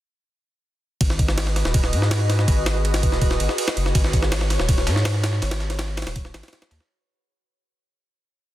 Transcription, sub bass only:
0, 0, Header, 1, 2, 480
1, 0, Start_track
1, 0, Key_signature, 5, "minor"
1, 0, Tempo, 368098
1, 1312, Time_signature, 4, 2, 24, 8
1, 11141, End_track
2, 0, Start_track
2, 0, Title_t, "Sub bass"
2, 0, Program_c, 0, 38
2, 1313, Note_on_c, 0, 32, 99
2, 2134, Note_off_c, 0, 32, 0
2, 2155, Note_on_c, 0, 27, 81
2, 2514, Note_on_c, 0, 44, 103
2, 2534, Note_off_c, 0, 27, 0
2, 3214, Note_off_c, 0, 44, 0
2, 3233, Note_on_c, 0, 32, 102
2, 4054, Note_off_c, 0, 32, 0
2, 4073, Note_on_c, 0, 27, 83
2, 4413, Note_off_c, 0, 27, 0
2, 4431, Note_on_c, 0, 32, 97
2, 4540, Note_off_c, 0, 32, 0
2, 4913, Note_on_c, 0, 30, 86
2, 5129, Note_off_c, 0, 30, 0
2, 5151, Note_on_c, 0, 32, 99
2, 5972, Note_off_c, 0, 32, 0
2, 5994, Note_on_c, 0, 27, 85
2, 6353, Note_on_c, 0, 44, 108
2, 6373, Note_off_c, 0, 27, 0
2, 7053, Note_off_c, 0, 44, 0
2, 7074, Note_on_c, 0, 32, 100
2, 7894, Note_off_c, 0, 32, 0
2, 7914, Note_on_c, 0, 27, 83
2, 8254, Note_off_c, 0, 27, 0
2, 8270, Note_on_c, 0, 32, 95
2, 8379, Note_off_c, 0, 32, 0
2, 8752, Note_on_c, 0, 39, 100
2, 8860, Note_off_c, 0, 39, 0
2, 11141, End_track
0, 0, End_of_file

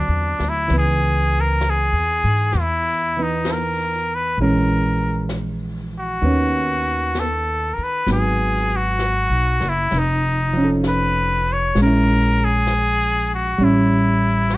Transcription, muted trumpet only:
0, 0, Header, 1, 2, 480
1, 0, Start_track
1, 0, Tempo, 920245
1, 364, Time_signature, 4, 2, 24, 8
1, 7601, End_track
2, 0, Start_track
2, 0, Title_t, "Muted trumpet"
2, 0, Program_c, 0, 59
2, 0, Note_on_c, 0, 62, 72
2, 257, Note_on_c, 0, 64, 75
2, 264, Note_off_c, 0, 62, 0
2, 385, Note_off_c, 0, 64, 0
2, 407, Note_on_c, 0, 68, 79
2, 734, Note_on_c, 0, 70, 84
2, 742, Note_off_c, 0, 68, 0
2, 886, Note_on_c, 0, 68, 84
2, 894, Note_off_c, 0, 70, 0
2, 1358, Note_on_c, 0, 64, 77
2, 1366, Note_off_c, 0, 68, 0
2, 1683, Note_on_c, 0, 63, 64
2, 1691, Note_off_c, 0, 64, 0
2, 1837, Note_on_c, 0, 70, 72
2, 1845, Note_off_c, 0, 63, 0
2, 2164, Note_on_c, 0, 71, 79
2, 2172, Note_off_c, 0, 70, 0
2, 2298, Note_off_c, 0, 71, 0
2, 2304, Note_on_c, 0, 70, 61
2, 2753, Note_off_c, 0, 70, 0
2, 3125, Note_on_c, 0, 66, 82
2, 3755, Note_on_c, 0, 69, 74
2, 3763, Note_off_c, 0, 66, 0
2, 4036, Note_on_c, 0, 70, 55
2, 4043, Note_off_c, 0, 69, 0
2, 4087, Note_on_c, 0, 71, 75
2, 4095, Note_off_c, 0, 70, 0
2, 4223, Note_off_c, 0, 71, 0
2, 4236, Note_on_c, 0, 68, 76
2, 4570, Note_on_c, 0, 66, 88
2, 4578, Note_off_c, 0, 68, 0
2, 5053, Note_on_c, 0, 64, 83
2, 5061, Note_off_c, 0, 66, 0
2, 5208, Note_on_c, 0, 63, 81
2, 5216, Note_off_c, 0, 64, 0
2, 5583, Note_off_c, 0, 63, 0
2, 5676, Note_on_c, 0, 71, 82
2, 6012, Note_on_c, 0, 73, 82
2, 6020, Note_off_c, 0, 71, 0
2, 6146, Note_off_c, 0, 73, 0
2, 6165, Note_on_c, 0, 70, 84
2, 6491, Note_on_c, 0, 68, 99
2, 6499, Note_off_c, 0, 70, 0
2, 6954, Note_off_c, 0, 68, 0
2, 6959, Note_on_c, 0, 66, 79
2, 7115, Note_on_c, 0, 64, 74
2, 7123, Note_off_c, 0, 66, 0
2, 7597, Note_off_c, 0, 64, 0
2, 7601, End_track
0, 0, End_of_file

